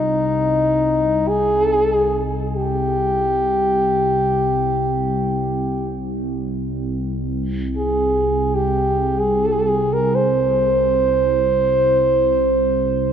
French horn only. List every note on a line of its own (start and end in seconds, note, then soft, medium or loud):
0.00 1.30 D#4 medium
1.28 2.28 G#4 medium
2.55 5.96 G4 medium
7.77 8.57 G#4 medium
8.55 9.21 G4 medium
9.19 9.95 G#4 medium
9.93 10.17 A#4 medium
10.15 13.13 C5 medium